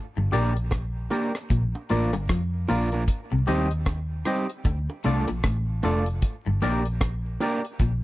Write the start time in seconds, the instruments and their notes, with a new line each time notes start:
0.17 fingered electric bass G1, clean electric guitar G2
0.32 fingered electric bass A#1, clean electric guitar A#2 A#3 D4 G4 A#4, synth stab G4 A#4 D5, closed hi-hat
0.56 closed hi-hat
0.71 kick, cross-stick, closed hi-hat, high bongo
1.10 clean electric guitar A#3 D4 G4 A#4, synth stab G4 A#4 D5, closed hi-hat, high bongo, low bongo
1.35 cross-stick, closed hi-hat
1.50 fingered electric bass A#1, clean electric guitar A#2, kick, closed hi-hat
1.75 high bongo
1.89 fingered electric bass A1, clean electric guitar A2 A#3 D4 F4 A#4, synth stab F4 A#4 D5, closed hi-hat
2.13 fingered electric bass G1, clean electric guitar G2, closed hi-hat, high bongo
2.29 fingered electric bass F2, clean electric guitar F3, kick, cross-stick, closed hi-hat
2.68 fingered electric bass A#1, clean electric guitar A#2 A#3 D4 F4 A#4, synth stab F4 A#4 D5, open hi-hat, high bongo, low bongo
2.92 clean electric guitar A#3 D4 F4 A#4, closed hi-hat
3.08 kick, closed hi-hat
3.32 fingered electric bass C2, clean electric guitar C3
3.47 fingered electric bass D#2, clean electric guitar D#3 G3 C4 D#4 G4, synth stab G4 C5 D#5, closed hi-hat
3.71 closed hi-hat
3.86 kick, cross-stick, closed hi-hat, high bongo
4.25 clean electric guitar G3 C4 D#4 G4, synth stab G4 C5 D#5, cross-stick, closed hi-hat, high bongo, low bongo
4.49 closed hi-hat
4.65 fingered electric bass D2, clean electric guitar D3, kick, closed hi-hat
4.90 high bongo
5.04 fingered electric bass C2, clean electric guitar C3 A3 D4 F4 A4, synth stab F4 A4 D5, closed hi-hat
5.28 fingered electric bass A#1, clean electric guitar A#2, closed hi-hat, high bongo
5.44 fingered electric bass A1, clean electric guitar A2, kick, cross-stick, closed hi-hat
5.83 fingered electric bass F1, clean electric guitar F2 A3 D4 F4 A4, synth stab F4 A4 D5, closed hi-hat, high bongo, low bongo
6.06 closed hi-hat
6.22 kick, closed hi-hat
6.46 fingered electric bass G1, clean electric guitar G2
6.62 fingered electric bass A#1, clean electric guitar A#2 A#3 D4 G4 A#4, synth stab G4 A#4 D5, closed hi-hat
6.85 closed hi-hat
7.01 kick, cross-stick, closed hi-hat, high bongo
7.40 clean electric guitar A#3 D4 G4 A#4, synth stab G4 A#4 D5, closed hi-hat, high bongo, low bongo
7.65 closed hi-hat
7.79 fingered electric bass A#1, clean electric guitar A#2, kick, closed hi-hat